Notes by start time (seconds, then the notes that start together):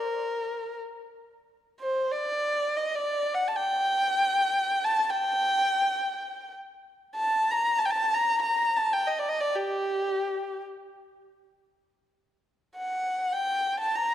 Already playing: A#4
1.80 C5
2.12 D5
2.76 D#5
2.95 D5
3.34 F#5
3.48 A5
3.56 G5
4.84 A5
5.10 G5
7.15 A5
7.51 A#5
7.78 A5
7.85 G5
7.90 A5
8.14 A#5
8.42 A#5
8.76 A5
8.93 G5
9.07 D#5
9.19 D5
9.29 D#5
9.41 D5
9.55 G4
12.76 F#5
13.32 G5
13.80 A5
13.95 A#5